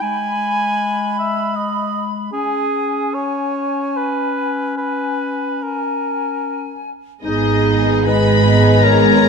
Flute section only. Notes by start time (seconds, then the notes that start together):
0.01 B5
2.34 G#5
3.17 G#5
4.80 G#5
5.64 G#5
7.24 G#4
8.05 D#5
8.83 C#5